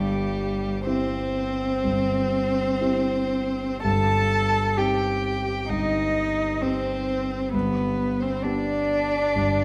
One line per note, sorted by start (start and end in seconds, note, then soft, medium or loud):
0.00 1.80 G1 medium
0.00 1.80 G2 medium
0.00 0.88 G3 medium
0.00 0.84 G4 medium
0.86 1.80 C4 soft
0.86 3.83 C4 medium
0.86 1.80 E4 soft
0.86 1.80 G4 soft
0.86 3.80 C5 medium
1.84 3.80 G1 soft
1.84 3.80 G2 soft
2.81 3.80 C4 soft
2.81 3.80 E4 soft
2.81 3.80 G4 soft
3.83 5.66 G1 soft
3.83 5.67 G2 medium
3.83 4.79 A4 medium
3.83 4.80 A5 medium
4.77 5.66 C4 soft
4.77 5.66 D#4 soft
4.77 5.68 G4 medium
4.77 5.67 G4 soft
4.77 5.71 G5 medium
5.69 7.49 G1 soft
5.69 7.49 G2 soft
5.69 6.63 D#4 medium
5.69 6.64 D#5 medium
6.62 7.52 C4 medium
6.62 7.49 C4 soft
6.62 7.50 D#4 soft
6.62 7.50 G4 soft
6.62 7.53 C5 medium
7.53 9.30 G1 medium
7.53 9.30 G2 medium
7.53 8.24 B3 medium
7.53 8.21 B4 medium
8.20 8.45 C4 medium
8.20 8.43 C5 medium
8.42 9.31 B3 soft
8.42 9.64 D4 medium
8.42 9.31 D4 soft
8.42 9.31 G4 soft
8.42 9.64 D5 medium
9.35 9.64 G1 soft
9.35 9.64 G2 soft